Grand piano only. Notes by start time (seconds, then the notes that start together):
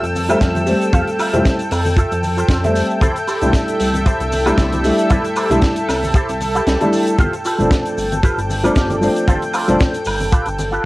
Already playing: G3 A3 C4
0.29 G3 A3 C4 E5
0.66 G3 A3 C4
1.33 G3 A3 C4 E4
2.63 G3 A3 C4 E5
3.41 G3 A3 D4 E4
4.46 G3 A3 D4 E4
4.83 G3 A3 D4 E4
5.50 G3 A3 D4 E4
6.81 G3 A3 D4 E4
7.58 F3 A3 C4 D4
8.63 F3 A3 C4 D4
9.01 F3 A3 C4 D4
9.68 F3 A3 C4 D4